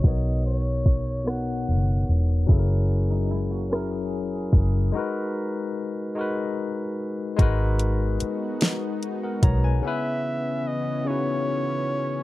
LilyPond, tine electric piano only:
\new Staff \with { instrumentName = "Tine electric piano" } { \time 6/8 \key cis \dorian \tempo 4. = 49 << { r2. | r2. | r2. | r2 r16 <ais' fis''>16 <cis'' ais''>16 <b' gis''>16~ |
<b' gis''>16 r2 r8. | } \\ { <b, b dis' ais' cis''>4 r8 <b, b dis' ais' cis''>4 r8 | <fis cis' e' gis' a' ais'>4 r8 <fis cis' e' gis' ais'>4 r8 | <gis dis' fis' ais' b'>4 r8 <gis dis' fis' ais' b'>4 r8 | <gis dis' fis' ais' b'>4 r2 |
<cis b cis' e' b'>4 r8 <cis cis' dis' e' fis'>4 r8 | } >> }